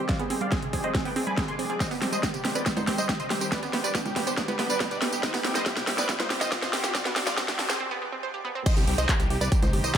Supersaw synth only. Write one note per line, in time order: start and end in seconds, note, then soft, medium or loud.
0.09 0.17 D5 medium
0.09 0.17 F5 loud
0.20 0.28 G#4 medium
0.31 0.39 G#4 medium
0.41 0.49 D5 medium
0.41 0.49 F5 loud
0.52 0.60 G#4 medium
0.63 0.71 G#4 medium
0.73 0.82 G#4 medium
0.84 0.92 C5 medium
0.84 0.92 D#5 medium
0.95 1.03 G#4 medium
1.05 1.14 B4 medium
1.05 1.14 G5 medium
1.16 1.24 G#4 medium
1.27 1.35 G#5 medium
1.27 1.35 B5 medium
1.38 1.46 G#4 medium
1.48 1.56 G#5 medium
1.48 1.56 C6 medium
1.59 1.67 G#4 medium
1.70 1.78 G#4 medium
1.80 1.89 C5 medium
1.80 1.89 D#5 loud
1.91 1.99 G4 medium
2.02 2.10 G4 medium
2.13 2.21 C5 medium
2.13 2.21 D#5 loud
2.24 2.32 G4 medium
2.34 2.42 G4 medium
2.45 2.53 G4 medium
2.55 2.64 B4 medium
2.55 2.63 D5 medium
2.66 2.74 G4 medium
2.77 2.85 D#4 medium
2.77 2.85 C5 medium
2.88 2.96 G4 medium
2.98 3.06 C5 medium
2.98 3.06 D#5 medium
3.09 3.17 G4 medium
3.20 3.28 C5 medium
3.20 3.28 D#5 medium
3.31 3.39 G4 medium
3.41 3.49 G4 medium
3.52 3.60 B4 medium
3.52 3.60 D5 loud
3.63 3.71 G4 medium
3.73 3.81 G4 medium
3.84 3.92 B4 medium
3.84 3.92 D5 loud
3.95 4.03 G4 medium
4.06 4.14 G4 medium
4.16 4.24 G4 medium
4.27 4.35 G4 medium
4.27 4.35 C5 medium
4.38 4.46 G4 medium
4.48 4.57 G4 medium
4.48 4.57 B4 medium
4.59 4.67 G4 medium
4.70 4.78 B4 medium
4.70 4.78 D5 medium
4.81 4.89 G4 medium
4.91 4.99 B4 medium
4.91 4.99 D5 medium
5.02 5.10 G4 medium
5.13 5.21 G4 medium
5.23 5.31 C5 medium
5.23 5.31 D#5 loud
5.34 5.42 G4 medium
5.45 5.53 G4 medium
5.55 5.64 C5 medium
5.55 5.64 D#5 medium
5.66 5.74 G4 medium
5.77 5.85 G4 medium
5.87 5.96 G4 medium
5.98 6.06 B4 medium
5.98 6.06 D5 medium
6.09 6.17 G4 medium
6.20 6.28 D#4 medium
6.20 6.28 C5 medium
6.30 6.38 G4 medium
6.41 6.49 C5 medium
6.41 6.49 D#5 loud
6.52 6.60 G4 medium
6.62 6.71 C5 medium
6.62 6.71 D#5 medium
6.73 6.81 G4 medium
6.84 6.92 G4 medium
6.94 7.03 F4 medium
6.94 7.03 D5 loud
7.05 7.14 D4 medium
7.16 7.24 D4 medium
7.27 7.35 F4 medium
7.27 7.35 D5 loud
7.37 7.46 D4 medium
7.48 7.56 D4 medium
7.59 7.67 D4 medium
7.69 7.78 G#4 medium
7.69 7.78 C5 medium
8.66 8.74 C5 medium
8.66 8.74 D#5 loud
8.77 8.85 G4 medium
8.88 8.96 G4 medium
8.98 9.06 C5 medium
8.98 9.06 D#5 loud
9.09 9.17 G4 medium
9.20 9.28 G4 medium
9.30 9.39 G4 medium
9.41 9.49 B4 medium
9.41 9.49 D5 medium
9.52 9.60 G4 medium
9.63 9.71 D#4 medium
9.63 9.71 C5 medium
9.73 9.81 G4 medium
9.84 9.92 C5 medium
9.84 9.92 D#5 medium